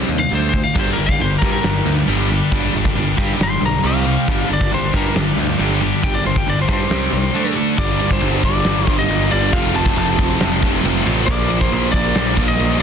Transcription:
0.09 picked electric bass D#2, distorted electric guitar C3 G3
0.19 lead electric guitar F5
0.29 picked electric bass D2, distorted electric guitar D3 A3 D4, open hi-hat
0.35 lead electric guitar C5
0.49 distorted electric guitar D3 A3, lead electric guitar C5
0.53 kick
0.64 lead electric guitar F5
0.74 picked electric bass G1, distorted electric guitar G2 D3 G3 A#3 D4 G4, kick, crash
0.80 lead electric guitar C5
0.93 distorted electric guitar G2 D3, lead electric guitar A#4
0.98 picked electric bass G1
1.06 lead electric guitar F5, kick
1.19 picked electric bass G1, distorted electric guitar G2 D3 G3 A#3 D4 G4, lead electric guitar C5, open hi-hat
1.38 distorted electric guitar G2 G3 A#3, picked electric bass G2, lead electric guitar A#4, kick
1.43 distorted electric guitar D3 G3 D4 G4
1.52 lead electric guitar A#4
1.63 picked electric bass G1, distorted electric guitar G2 D3 G3 A#3 D4 G4, snare, open hi-hat
1.85 picked electric bass D2, distorted electric guitar G2 D3
2.06 picked electric bass G1, distorted electric guitar G2 D3 G3 A#3 D4 G4, open hi-hat
2.28 distorted electric guitar G2 D3 G3 A#3 D4 G4
2.51 picked electric bass G1, distorted electric guitar G2 D3 G3 A#3 D4 G4, kick, open hi-hat
2.74 picked electric bass G1, distorted electric guitar G2 D3
2.85 kick
2.94 picked electric bass G1, distorted electric guitar G2 D3 G3 A#3 D4 G4, open hi-hat
3.16 distorted electric guitar G2 D3 G3 A#3 D4 G4, picked electric bass G2, kick
3.37 picked electric bass G1, distorted electric guitar G2 D3 G3 A#3 D4 G4, snare, open hi-hat
3.43 lead electric guitar C6
3.61 picked electric bass B1, distorted electric guitar G2 D3
3.66 lead electric guitar A#5
3.83 picked electric bass C2, distorted electric guitar C3 G3 C4 G4, lead electric guitar F5, open hi-hat
4.05 distorted electric guitar C3 G3 C4 G4
4.28 picked electric bass G1, distorted electric guitar G2 D3 G3 A#3 D4 G4, kick, open hi-hat
4.49 picked electric bass G1, distorted electric guitar G2 D3, lead electric guitar D5
4.61 kick
4.71 picked electric bass G1, distorted electric guitar G2 D3 G3 A#3 D4 G4, lead electric guitar C5, open hi-hat
4.92 distorted electric guitar G2 D3 G3 A#3 D4 G4, picked electric bass G2, lead electric guitar A#4, kick
5.06 snare
5.14 picked electric bass G1, distorted electric guitar G2 D3 G3 A#3 D4 G4, snare, open hi-hat
5.37 picked electric bass D2, distorted electric guitar G2 D3
5.58 picked electric bass G1, distorted electric guitar G2 D3 G3 A#3 D4 G4, open hi-hat
5.81 distorted electric guitar G2 D3 G3 A#3 D4 G4
6.02 picked electric bass G1, distorted electric guitar G2 D3 G3 A#3 D4 G4, lead electric guitar G5, kick, open hi-hat
6.15 lead electric guitar D5
6.25 picked electric bass G1, distorted electric guitar G2 D3, lead electric guitar C5
6.36 lead electric guitar G5, kick
6.46 picked electric bass G1, distorted electric guitar G2 D3 G3 A#3 D4 G4, lead electric guitar D5, open hi-hat
6.61 lead electric guitar C5
6.68 distorted electric guitar G2 D3 G3 A#3 D4 G4, picked electric bass G2, kick
6.73 lead electric guitar C5
6.89 picked electric bass C2, distorted electric guitar C3 G3 C4 G4, snare, open hi-hat
7.12 picked electric bass C2, distorted electric guitar C3 G3
7.34 distorted electric guitar D3 A3 D4 A4
7.55 distorted electric guitar D3 A3 D4 A4
7.76 picked electric bass G1, distorted electric guitar G2 D3 G3 A#3 D4, lead electric guitar D5, kick, ride
8.00 distorted electric guitar G2 D3 G3, ride
8.11 lead electric guitar C5, kick
8.21 picked electric bass G1, distorted electric guitar G2 D3 G3, ride
8.43 distorted electric guitar G2 D3 G3, lead electric guitar D5, kick, ride
8.64 picked electric bass G1, distorted electric guitar G2 D3 G3, snare, ride
8.87 picked electric bass G1, distorted electric guitar G2 D3 G3, kick, ride
8.99 lead electric guitar D#5
9.08 picked electric bass G1, distorted electric guitar G2 D3 G3, ride
9.30 picked electric bass G1, distorted electric guitar G2 D3 G3 A#3 D4, lead electric guitar D5, ride
9.51 picked electric bass F1, distorted electric guitar F2 C3 F3 A3 C4, lead electric guitar F5, kick, ride
9.74 distorted electric guitar F2 C3 F3, lead electric guitar A5, ride
9.86 kick
9.96 picked electric bass F1, distorted electric guitar F2 C3 F3, lead electric guitar A5, ride
10.19 distorted electric guitar F2 C3 F3, kick, ride
10.40 picked electric bass F1, distorted electric guitar F2 C3 F3, snare, ride
10.62 picked electric bass F1, distorted electric guitar F2 C3 F3, kick, ride
10.83 picked electric bass F1, distorted electric guitar F2 C3 F3, ride
11.04 picked electric bass A1, distorted electric guitar F2 C3 F3 A3 C4, ride
11.26 picked electric bass A#1, distorted electric guitar A#2 F3 A#3, lead electric guitar D5, kick, ride
11.31 distorted electric guitar D4
11.50 distorted electric guitar A#2 F3 A#3, ride
11.61 lead electric guitar C5, kick
11.72 picked electric bass A#1, distorted electric guitar A#2 F3 A#3, ride
11.92 distorted electric guitar A#2 F3 A#3, lead electric guitar D5, kick, ride
12.15 picked electric bass A#1, distorted electric guitar A#2 F3 A#3, snare, ride
12.37 picked electric bass A#1, distorted electric guitar A#2 F3 A#3, kick, ride
12.48 lead electric guitar D#5
12.59 picked electric bass A#1, distorted electric guitar A#2 F3 A#3, ride
12.79 distorted electric guitar C3

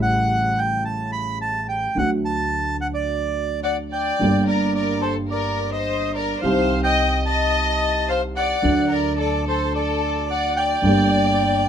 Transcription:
Already playing: upright bass A1, upright piano A1 A2 C#3 G3 A3 E4
0.02 bandoneon F#5
0.58 bandoneon G5
0.85 bandoneon A5
1.12 bandoneon B5
1.42 bandoneon A5
1.69 bandoneon G5
1.97 upright bass D2, upright piano D2 D3 F#3 A3 F#4, bandoneon F#5
2.25 bandoneon A5
2.81 bandoneon F#5
2.94 bandoneon D5
3.63 violin section D5, bandoneon F#5
3.91 violin section D5, bandoneon G5
4.19 upright piano G1 G2 D3 G3 A#3, upright bass G1
4.24 upright piano G4
4.48 violin section A#4, bandoneon D5
4.75 violin section A#4, bandoneon D5
5.02 violin section A4, bandoneon C5
5.30 violin section A#4, bandoneon D5
5.72 violin section C5, bandoneon D#5
6.15 violin section A#4, bandoneon D5
6.42 upright piano C2 C3 D#3 G3 C4, upright bass C2, violin section C5, bandoneon F5
6.46 upright piano G4
6.84 violin section D#5, bandoneon G5
7.26 violin section D#5, bandoneon A5
8.09 violin section C5, bandoneon F5
8.36 violin section D5, bandoneon F#5
8.62 upright piano D2 D3 F#3 A3 F#4, upright bass D2
8.90 violin section A#4, bandoneon D5
9.17 violin section A4, bandoneon D5
9.46 violin section A4, bandoneon C5
9.74 violin section A4, bandoneon D5
10.29 violin section D5, bandoneon F#5
10.57 violin section D5, bandoneon G5
10.82 upright bass G1, upright piano G1 G2 D3 G3 A#3 G4

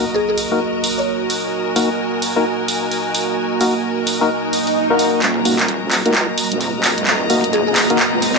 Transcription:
Already playing: ambient pad A#3 F#4 D#5, string section F#4 A#4 D#5 A#5
0.14 synth pluck G#4
0.29 synth pluck G#4
0.38 open hi-hat
0.52 synth stab A#3 D#4 F#4 A#4
0.84 open hi-hat
0.98 synth pluck C#5
1.16 string section G#5
1.30 open hi-hat
1.76 synth stab A#3 D#4 F#4 A#4, open hi-hat
2.22 open hi-hat
2.36 synth stab A#3 D#4 F#4 A#4
2.68 open hi-hat
2.91 open hi-hat
3.15 open hi-hat
3.61 synth stab A#3 D#4 F#4 A#4, open hi-hat
4.07 open hi-hat
4.21 synth stab A#3 D#4 F#4 A#4
4.30 swell
4.53 open hi-hat
4.67 open hi-hat
4.90 synth stab A#3 D#4 F#4 A#4
4.99 open hi-hat
5.22 wobble bass D#1, ambient pad A#3 F#4 D#5, clap, closed hi-hat, riser
5.34 string section A#5
5.45 synth stab A#3 D#4 F#4 A#4, open hi-hat
5.55 string section D#5
5.59 wobble bass D#1, clap, closed hi-hat
5.68 closed hi-hat
5.91 clap, open hi-hat
6.05 wobble bass C#2, synth stab A#3 D#4 F#4 A#4, closed hi-hat
6.15 clap, closed hi-hat
6.38 open hi-hat
6.51 wobble bass D#1, closed hi-hat
6.61 open hi-hat
6.84 clap, open hi-hat
6.98 wobble bass D#1, closed hi-hat
7.07 wobble bass D#1, clap, closed hi-hat
7.30 synth stab A#3 D#4 F#4 A#4, open hi-hat
7.44 wobble bass D#1, closed hi-hat
7.53 synth pluck G#4, closed hi-hat
7.67 synth pluck G#4
7.76 clap, open hi-hat
7.90 synth stab A#3 D#4 F#4 A#4, closed hi-hat
7.99 clap, closed hi-hat
8.13 wobble bass C#2
8.22 open hi-hat

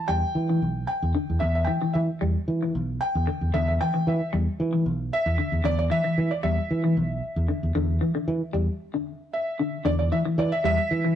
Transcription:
0.08 fingered electric bass E2, clean electric guitar G3, felt piano G5
0.35 fingered electric bass E3
0.49 clean electric guitar E3
0.62 fingered electric bass B1
0.87 felt piano G5
1.02 fingered electric bass E2
1.15 clean electric guitar D3
1.30 fingered electric bass E2
1.40 fingered electric bass E2, felt piano E5, muted clean electric guitar stroke
1.55 felt piano E5
1.65 clean electric guitar E3, felt piano G5
1.82 clean electric guitar E3
1.93 fingered electric bass E3, felt piano E5
2.21 fingered electric bass E2, clean electric guitar G3
2.48 fingered electric bass E3
2.63 clean electric guitar E3
2.75 fingered electric bass B1
3.01 felt piano G5
3.15 fingered electric bass E2
3.27 clean electric guitar D3
3.41 fingered electric bass E2
3.54 fingered electric bass E2, clean electric guitar D3, felt piano E5
3.68 felt piano E5
3.81 clean electric guitar E3, felt piano G5
3.94 clean electric guitar E3
4.07 fingered electric bass E3, felt piano E5
4.33 fingered electric bass E2, clean electric guitar G3
4.60 fingered electric bass E3
4.73 clean electric guitar E3
4.86 fingered electric bass B1
5.13 felt piano E5
5.26 fingered electric bass E2
5.38 clean electric guitar D3
5.52 fingered electric bass E2
5.64 fingered electric bass E2, clean electric guitar D3, felt piano D5
5.79 felt piano D5
5.90 clean electric guitar E3, felt piano E5
6.04 clean electric guitar E3
6.18 fingered electric bass E3
6.31 felt piano D5
6.43 fingered electric bass E2, clean electric guitar G3, felt piano E5
6.71 fingered electric bass E3
6.84 clean electric guitar E3
6.97 fingered electric bass B1
7.36 fingered electric bass E2
7.48 clean electric guitar D3
7.63 fingered electric bass E2
7.75 fingered electric bass E2, clean electric guitar D3
8.01 clean electric guitar E3
8.15 clean electric guitar D3
8.28 fingered electric bass E3
8.53 fingered electric bass E2, clean electric guitar G3
8.94 clean electric guitar D3
9.33 felt piano E5
9.59 clean electric guitar D3
9.85 fingered electric bass E2, clean electric guitar D3, felt piano D5
9.99 felt piano D5
10.12 clean electric guitar E3, felt piano E5
10.25 clean electric guitar E3
10.38 fingered electric bass E3, felt piano D5
10.52 felt piano E5
10.64 fingered electric bass E2, clean electric guitar G3, felt piano E5
10.91 fingered electric bass E3
11.05 clean electric guitar E3

